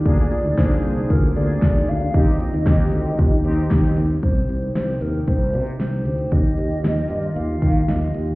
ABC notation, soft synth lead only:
X:1
M:4/4
L:1/16
Q:1/4=115
K:Eb
V:1 name="Soft synth lead"
d4 c4 B2 d2 d2 f2 | e12 z4 | c4 c2 B2 c4 c2 c2 | e8 f4 e3 z |]